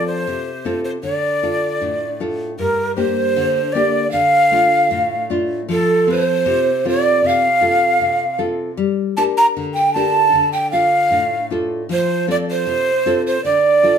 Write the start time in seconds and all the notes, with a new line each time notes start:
Already playing: F3 C4 F4 A4
0.07 C5
0.27 C3
0.65 C4 F4 A4
0.84 C5
1.03 D3 D5
1.43 D4 F4 A4
1.81 A2
2.20 D4 F4 A4
2.59 G2 A#4
2.95 A#3 D4 G4 C5
3.36 D3
3.73 A#3 D4 G4 D5
4.10 D3 F5
4.51 A3 D4 F4
4.91 A2
5.30 A3 D4 F4
5.69 F3 A4
6.07 C4 F4 A4 B4
6.12 C5
6.25 C5
6.46 C3
6.85 C4 F4 A4 D5
6.90 D5
7.24 C3 F5
7.61 C4 F4 A4
8.01 C3
8.38 C4 F4 A4
8.77 G3
9.17 D4 G4 A#4 A5
9.37 A#5
9.57 D3
9.74 G5
9.93 D4 G4 A#4 A5
10.33 D3
10.52 G5
10.72 D4 F4 A4 F5
11.11 A2
11.50 D4 F4 A4
11.89 F3 C5
12.27 C4 F4 A4 D5
12.51 C5
12.67 C3
13.06 C4 F4 A4
13.27 C5
13.45 D3 D5
13.83 D4 F4 A4